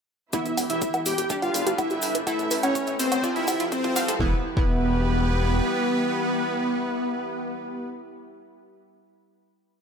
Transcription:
0.33 string section E3 B3 E4 G4, synth stab E3 B3 E4, ambient pad E4, supersaw synth E4, analog polysynth E5, kick, closed hi-hat, cabasa
0.46 analog synth bass E1, synth arpeggio sound E4, closed hi-hat, cabasa
0.57 analog synth bass E1, synth arpeggio sound E4, open hi-hat, cabasa, low woodblock
0.70 analog synth bass E1, supersaw synth E4, analog polysynth E5, closed hi-hat, cabasa
0.77 ambient pad B4 G5
0.81 synth arpeggio sound G4, kick, closed hi-hat, cabasa
0.94 analog synth bass E1, synth arpeggio sound B4, closed hi-hat, cabasa, low woodblock
1.06 analog synth bass E1, supersaw synth G4, analog polysynth G5, open hi-hat, cabasa
1.18 analog synth bass E1, synth arpeggio sound G4, closed hi-hat, cabasa
1.30 synth stab G3 D4 G4, string section G3 D4 A4 B4, synth arpeggio sound E5, kick, closed hi-hat, cabasa
1.42 analog synth bass G1, supersaw synth F4, analog polysynth F5, closed hi-hat, cabasa, low woodblock
1.54 analog synth bass G1, synth arpeggio sound A4, open hi-hat, cabasa
1.67 analog synth bass G1, synth arpeggio sound G4, closed hi-hat, cabasa
1.78 supersaw synth E4, analog polysynth E5, kick, closed hi-hat, cabasa, low woodblock
1.90 analog synth bass G1, synth arpeggio sound G4, closed hi-hat, cabasa
2.02 analog synth bass G1, synth arpeggio sound G5, open hi-hat, cabasa
2.15 analog synth bass G1, synth arpeggio sound B4, closed hi-hat, cabasa
2.27 synth stab A3 E4 A4, string section A3 C#4 E4, supersaw synth E4, analog polysynth E5, kick, closed hi-hat, cabasa, low woodblock
2.39 analog synth bass A1, synth arpeggio sound A4, closed hi-hat, cabasa
2.51 analog synth bass A1, synth arpeggio sound B4, open hi-hat, cabasa
2.63 analog synth bass A1, supersaw synth C#4, analog polysynth C#5, closed hi-hat, cabasa, low woodblock
2.71 ambient pad A5
2.75 synth arpeggio sound C#5, kick, closed hi-hat, cabasa
2.87 analog synth bass A1, synth arpeggio sound E5, closed hi-hat, cabasa
2.99 analog synth bass A1, supersaw synth C4, analog polysynth C5, open hi-hat, cabasa
3.12 analog synth bass A1, synth arpeggio sound C#5, closed hi-hat, cabasa, low woodblock
3.24 synth stab F3 C4 F4, string section F3 C4 G4 A4, synth arpeggio sound D5, kick, closed hi-hat, cabasa
3.36 analog synth bass F1, supersaw synth E4, analog polysynth E5, closed hi-hat, cabasa
3.48 analog synth bass F1, synth arpeggio sound G4, kick, open hi-hat, cabasa, low woodblock
3.60 analog synth bass F1, synth arpeggio sound F4, closed hi-hat, cabasa
3.72 supersaw synth C4, analog polysynth C5, kick, closed hi-hat, cabasa
3.84 analog synth bass F1, synth arpeggio sound F4, kick, closed hi-hat, cabasa
3.96 analog synth bass F1, synth arpeggio sound F5, kick, open hi-hat, cabasa, low woodblock
4.08 analog synth bass F1, synth arpeggio sound A4, kick, closed hi-hat, cabasa
4.20 analog synth bass E1, synth stab E3 B3 E4, string section E3 B3 E4 G4, supersaw synth B3, synth arpeggio sound E4, ambient pad G4, analog polysynth B4, kick
4.28 ambient pad E5
4.35 ambient pad B5
4.57 analog synth bass E1, synth stab E3 B3 E4, supersaw synth B3, synth arpeggio sound E4, analog polysynth B4, kick

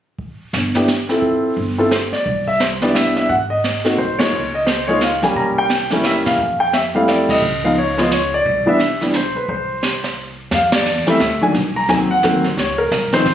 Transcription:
0.18 brush sweep, kick
0.53 upright bass G1, snare, hi-hat pedal
0.75 grand piano B3 D4 E4 G4, snare
0.88 snare, hi-hat pedal
1.09 grand piano C4 E4 F4 A4, snare
1.22 brush sweep, kick
1.56 upright bass G1
1.78 grand piano C4 E4 F4 A4
1.91 grand piano C5, snare, hi-hat pedal
2.13 grand piano D5, snare
2.26 upright bass C2, brush sweep, kick
2.48 grand piano E5
2.60 grand piano C5, snare, hi-hat pedal
2.82 grand piano B3 D4 E4 G4 D5, snare
2.95 grand piano E5, snare, hi-hat pedal
3.17 grand piano E5, snare
3.29 upright bass G#1, grand piano F#5, brush sweep, kick
3.50 grand piano D#5
3.64 snare, hi-hat pedal
3.85 grand piano A#3 C4 D#4 F#4, snare
3.98 upright bass C2, grand piano C5
4.19 grand piano G#3 A#3 D#4 F4 C#5, snare, ride
4.33 upright bass C#2, brush sweep
4.54 grand piano D#5
4.66 grand piano C5, snare, hi-hat pedal
4.88 grand piano G#3 A#3 D#4 F4 C#5
5.01 grand piano F5, snare, hi-hat pedal
5.22 grand piano G3 A#3 C#4 G4 G#5, snare
5.35 upright bass C2, grand piano A#5, brush sweep, kick
5.58 grand piano G5
5.70 snare, hi-hat pedal
5.91 grand piano G3 A#3 C#4 E4, snare
6.04 grand piano E5, snare, hi-hat pedal
6.25 upright bass C3, grand piano F5, snare
6.38 upright bass F2, brush sweep, kick
6.60 grand piano G5
6.73 grand piano E5, snare, hi-hat pedal
6.95 grand piano G3 A3 C4 E4 F5
7.08 grand piano D5, snare, hi-hat pedal
7.29 upright bass C2, grand piano D#5, kick, ride
7.42 upright bass C#2, brush sweep
7.64 grand piano F3 G#3 B3 D#4 F5
7.78 grand piano C#5
7.98 grand piano F3 G#3 B3 F4 D#5, snare
8.11 grand piano C#5, snare, hi-hat pedal
8.34 grand piano D5
8.45 upright bass C2, brush sweep, kick
8.66 grand piano E3 G3 B3 D4 E5
8.79 snare, hi-hat pedal
9.01 grand piano E3 G3 B3 D4, snare
9.14 grand piano C5, snare, hi-hat pedal
9.35 grand piano B4, muted upright bass stroke
9.48 upright bass C2, grand piano C5, brush sweep, kick
9.83 snare, hi-hat pedal
10.04 snare
10.51 upright bass F2, grand piano F5, brush sweep, kick, snare
10.72 grand piano D5, snare, ride
10.85 upright bass E2, hi-hat pedal
11.07 grand piano E3 G3 A3 C4 E5, muted upright bass stroke, snare
11.20 upright bass D2, kick, snare, hi-hat pedal
11.41 grand piano D#3 F#3 A#3 D4 G#5
11.54 upright bass C2, brush sweep, kick, snare
11.76 grand piano A#5
11.89 upright bass D#2, grand piano D#3 F#3 A#3 C4 G#5, kick, snare
12.11 grand piano F#5
12.23 upright bass D2, grand piano D#3 F#3 A#3 C4, kick, snare, hi-hat pedal
12.44 snare
12.57 upright bass C#2, grand piano C#5, brush sweep, kick, snare
12.78 grand piano A#4
12.91 upright bass C2, kick, snare, hi-hat pedal
13.12 grand piano D#3 F3 G#3 C4 C5, snare
13.25 upright bass D#2, kick, snare, hi-hat pedal

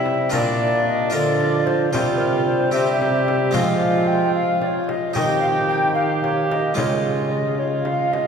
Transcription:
Already playing: harpsichord C3 C4 E4 G4, trombone C3, bassoon G3, viola E4, recorder E5
0.06 frame drum
0.30 trombone A#2, harpsichord A#2 D4 F4 A#4, bassoon A#3, viola D4, recorder D5, frame drum
0.87 recorder D#5
1.10 trombone D3, harpsichord D3 D4 F4 A#4, bassoon F3, viola F4, recorder D5
1.41 frame drum
1.66 recorder C5, frame drum
1.92 trombone C3, harpsichord C3 F4 G4, bassoon G3, viola F4, recorder C5, frame drum
2.17 recorder A#4
2.45 recorder C5
2.71 harpsichord C3 C4 G4, trombone C3, bassoon G3, viola G4, recorder E5
3.02 frame drum
3.28 frame drum
3.51 harpsichord F3 G#3 C4 F4, trombone F3, viola F4, recorder F5, frame drum
3.56 bassoon G#3
4.07 recorder G5
4.34 recorder F5
4.61 recorder D5, frame drum
4.66 recorder C#5
4.88 recorder D#5, frame drum
5.14 trombone D#3, harpsichord D#3 D#4 G4, bassoon C4, viola G4, recorder D#5, frame drum
5.40 recorder F5
5.68 recorder G5
5.94 bassoon A#3, viola G4, recorder F5
6.23 recorder C#5, frame drum
6.50 recorder D#5, frame drum
6.74 trombone C#3, harpsichord C#3 G#3 F4, bassoon G#3, viola F4, recorder C#5, frame drum
7.31 recorder D#5
7.58 bassoon G#3, viola F4, recorder C#5
7.85 recorder F5, frame drum
8.12 recorder D#5, frame drum

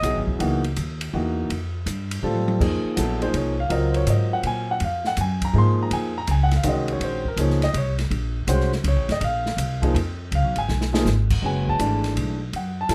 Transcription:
Already playing: trumpet D#5
0.02 upright bass B1, grand piano F#3 B3 E4 G#4, hi-hat pedal, ride
0.15 upright bass G#1
0.27 upright bass E1, kick
0.39 upright bass C#2, grand piano E3 A#3 D#4 F#4, ride
0.64 ride
0.76 upright bass D#2, hi-hat pedal, ride
1.01 ride
1.13 upright bass E2, grand piano E3 A#3 D#4 F#4
1.49 upright bass F2, ride
1.86 upright bass G2, hi-hat pedal, ride
2.11 ride
2.23 upright bass A2, grand piano G3 C4 F4 A4
2.36 high tom
2.48 high tom
2.59 upright bass F2, grand piano F3 A#3 D#4 G#4, kick, crash
2.84 muted upright bass stroke
2.96 upright bass A#1, grand piano F#3 B3 E4 A4, hi-hat pedal, ride
3.21 grand piano F3 A#3 D#4 G#4 C5, ride
3.34 upright bass C2, grand piano C#5, ride
3.60 grand piano F5
3.69 upright bass C#2, grand piano F#3 C4 F4 A#4 D#5, ride
3.92 grand piano C5, ride
3.97 grand piano C#5
4.07 upright bass G#2, grand piano D#5, hi-hat pedal, ride
4.33 grand piano F#5
4.43 upright bass A#2, grand piano G#5, ride
4.71 grand piano F#5
4.80 upright bass F2, ride
4.84 grand piano F5
5.05 grand piano F#5, snare
5.17 upright bass F#2, hi-hat pedal, ride
5.21 grand piano G#5
5.42 grand piano A#5, kick, ride
5.53 upright bass G#2, grand piano F3 A#3 D#4 G#4
5.58 grand piano C6
5.83 grand piano A#5
5.91 upright bass F2, grand piano G#5, ride
6.18 grand piano A#5
6.27 upright bass C#2, grand piano G#5, hi-hat pedal, ride
6.43 grand piano F#5
6.51 snare, ride
6.56 grand piano F5
6.63 upright bass C2, grand piano D#3 G#3 C#4 F#4, hi-hat pedal, ride
6.69 grand piano D#5
6.88 ride
6.92 grand piano C#5
7.00 upright bass A#1, grand piano C5, ride
7.25 grand piano A#4, kick
7.37 upright bass C#2, grand piano F3 A#3 D#4 G#4 C#5, hi-hat pedal, ride
7.50 snare
7.62 grand piano D#5, snare, ride
7.74 upright bass C2, grand piano C#5, ride
7.99 snare, ride
8.11 upright bass A#1, ride
8.47 upright bass C2, grand piano G#3 C#4 F#4 C5, hi-hat pedal, ride
8.60 snare
8.72 snare
8.84 upright bass C#2, ride
8.88 grand piano C#5
8.96 upright bass A#1
9.09 upright bass G#1, grand piano D#5, snare, ride
9.21 upright bass A#1, grand piano F5, ride
9.46 snare
9.57 upright bass C2, hi-hat pedal, ride
9.82 grand piano F3 A#3 D#4 G#4, kick, ride
9.95 upright bass F2, ride
10.32 upright bass C#2, grand piano F5, ride
10.44 upright bass B1
10.56 upright bass G#1, grand piano G#5, ride
10.69 upright bass B1, snare
10.81 snare
10.93 grand piano F3 A#3 D#4 G#4, snare
11.05 upright bass G#1, snare, hi-hat pedal
11.30 kick, crash
11.42 upright bass F#1, grand piano G#3 C#4 F#4 B4 G#5
11.67 grand piano A5, kick
11.79 upright bass G#1, grand piano E3 G#3 A3 D4, hi-hat pedal, ride
12.04 snare, ride
12.16 upright bass B1, ride
12.53 upright bass F#2, grand piano F#5, ride
12.81 grand piano A5
12.89 upright bass G#2, grand piano F#3 B3 E4 A4, snare, hi-hat pedal, ride

